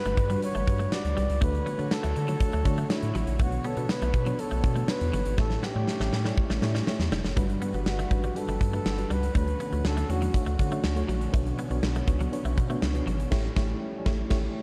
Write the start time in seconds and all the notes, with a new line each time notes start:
Already playing: G2 G3 D4 F#4 B4
0.05 G1 A3, closed hi-hat
0.17 G2, muted clean electric guitar stroke, kick, closed hi-hat
0.30 G3 D4 F#4 B4, closed hi-hat
0.42 C#5, closed hi-hat
0.55 G1 A3, closed hi-hat
0.67 G2 G3 D4 F#4 B4, muted clean electric guitar stroke, kick, closed hi-hat
0.79 A3, closed hi-hat
0.91 G3 D4 F#4 B4 D5, snare, tambourine
1.05 D2, closed hi-hat
1.17 C2 G3, closed hi-hat
1.30 C#2, closed hi-hat
1.41 D2 D3 A3 D4 F#4 B4 C#5, kick, closed hi-hat
1.54 closed hi-hat
1.66 B3, closed hi-hat
1.78 D3 A3 D4 F#4 C#5, muted clean electric guitar stroke, closed hi-hat
1.91 A4, snare, tambourine
2.03 D2 A3, closed hi-hat
2.16 D3, muted clean electric guitar stroke, closed hi-hat
2.28 F#3 A3 D4 F#4 C#5, closed hi-hat
2.40 kick, closed hi-hat
2.52 D2 A3, closed hi-hat
2.65 D3 A3 D4 F#4 C#5, muted clean electric guitar stroke, kick, closed hi-hat
2.78 A3, closed hi-hat
2.89 A3 D4 E4 F#4 C#5, snare, tambourine
3.02 A2, closed hi-hat
3.15 A1 F#3, closed hi-hat
3.27 A#1, closed hi-hat
3.39 B1 B2 D3 A3 B3 D4 F#4 C#5, kick, closed hi-hat
3.52 closed hi-hat
3.64 B3 A4, closed hi-hat
3.77 B2 B3 D4 F#4 C#5, muted clean electric guitar stroke, closed hi-hat
3.89 B4, snare, tambourine
4.02 B1 A3, closed hi-hat
4.14 B2, muted clean electric guitar stroke, kick, closed hi-hat
4.26 F#3 B3 D4 F#4 C#5, closed hi-hat
4.39 A4, closed hi-hat
4.51 B1 A3, closed hi-hat
4.63 B2 B3 D4 F#4 C#5, muted clean electric guitar stroke, kick, closed hi-hat
4.76 A3, closed hi-hat
4.88 B3 D4 F#4 B4 C#5, snare, tambourine
5.01 E2, closed hi-hat
5.13 G1 F#3, closed hi-hat
5.26 G#1, closed hi-hat
5.37 A1 A2 G3 A3 C#4 E4 G4 A4 C#5, kick, snare
5.50 snare
5.63 B3 G4, snare
5.74 A2 A3 E4 G4 C#5, muted clean electric guitar stroke
5.88 snare
6.00 A1 A3, snare
6.13 A2, muted clean electric guitar stroke, snare
6.24 G3 A3 E4 G4 C#5, snare
6.38 kick
6.50 A1 A3, snare
6.62 A2 A3 E4 G4 C#5, muted clean electric guitar stroke, snare
6.75 G3, snare
6.87 A3 E4 G4 C#5, snare
6.99 E2, snare
7.12 F1 G3, snare
7.24 F#1, snare
7.36 G1 G2 G3 A3 D4 F#4 B4, kick, closed hi-hat
7.50 closed hi-hat
7.62 B3, closed hi-hat
7.73 G1 G3 D4 F#4 B4, muted clean electric guitar stroke, closed hi-hat
7.86 G1 F#4, snare
7.99 A3, closed hi-hat
8.10 A1 G3 D4 F#4 B4, muted clean electric guitar stroke, kick, closed hi-hat
8.24 G3, closed hi-hat
8.35 G3 D4 F#4 A4 B4, closed hi-hat
8.48 G1 A3, closed hi-hat
8.61 G2, muted clean electric guitar stroke, kick, closed hi-hat
8.73 G3 A3 D4 F#4 A4 B4, closed hi-hat
8.86 G1, snare
8.97 G3 D4 F#4 B4, closed hi-hat
9.10 C#2 G3 B4, closed hi-hat
9.23 closed hi-hat
9.35 D2 D3 A3 C#4 D4 F#4 B4 C#5, kick, closed hi-hat
9.48 closed hi-hat
9.60 B3, closed hi-hat
9.72 D2 A3 D4 F#4 C#5, muted clean electric guitar stroke, closed hi-hat
9.85 D2 A4, snare
9.97 A3, closed hi-hat
10.09 E2 A3 D4 F#4 C#5, muted clean electric guitar stroke, closed hi-hat
10.22 F#3, closed hi-hat
10.34 A3 D4 F#4 C#5, kick, closed hi-hat
10.46 D2 A3, closed hi-hat
10.59 D3, muted clean electric guitar stroke, kick, closed hi-hat
10.71 A3 D4 F#4 C#5, closed hi-hat
10.84 D2, snare
10.96 A3 D4 F#4 C#5, closed hi-hat
11.08 A#1 F#3, closed hi-hat
11.21 closed hi-hat
11.32 B1 B2 A3 B3 C#4 D4 F#4 C#5, kick, closed hi-hat
11.46 closed hi-hat
11.58 B3, closed hi-hat
11.70 B1 B3 D4 F#4 C#5, muted clean electric guitar stroke, closed hi-hat
11.83 B1, snare
11.95 A3, closed hi-hat
12.07 C#2 B3 D4 F#4 C#5, muted clean electric guitar stroke, kick, closed hi-hat
12.20 F#3, closed hi-hat
12.32 B3 D4 F#4 C#5, closed hi-hat
12.45 B1 A3, closed hi-hat
12.57 B2, muted clean electric guitar stroke, kick, closed hi-hat
12.69 A3 B3 D4 F#4 C#5, closed hi-hat
12.82 C#2, snare
12.94 B3 D4 F#4 C#5, closed hi-hat
13.07 G#1 F#3, closed hi-hat
13.20 closed hi-hat
13.31 A1 A2 G3 A3 E4 G4 C#5, kick, snare, crash
13.56 A1 A3 E4 G4 C#5, kick, snare
14.05 A1 A3 E4 G4 C#5, kick, snare
14.30 A1 A3 E4 G4 C#5, kick, snare, crash